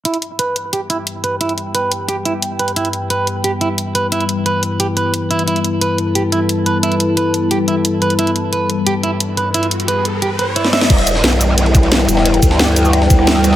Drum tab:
CC |----------------|----------------|----------------|----------------|
RD |----------------|----------------|----------------|----------------|
HH |xxx-x-x-x-x-x-x-|xxx-x-x-x-x-x-xx|xxx-x-x-x-x-x-x-|xxx-x-x-x-x-x-xx|
SH |----------------|----------------|----------------|----------------|
SD |----------------|----------------|----------------|----------------|
BD |----------------|----------------|----------------|----------------|

CC |----------------|----------------|----------------|----------------|
RD |----------------|----------------|----------------|----------------|
HH |xxx-x-x-x-x-x-x-|xxx-x-x-x-x-x-xx|xxx-x-x-x-x-x-x-|xxxxx-x-x-x-x-xx|
SH |----------------|----------------|----------------|----------------|
SD |----------------|----------------|----------------|-------------ooo|
BD |----------------|----------------|----------------|----------------|

CC |x---------------|----------------|
RD |xxx-xxx-xxxxx-x-|x-x-x-x-x-x-x-x-|
HH |xxx-x-x-x-x-x-x-|xxx-x-x-x-x-x-x-|
SH |--x---x---x---x-|--x---xx--x---x-|
SD |---oo-------o--o|---oo---ro-rooro|
BD |o---------o-----|--o-------o-----|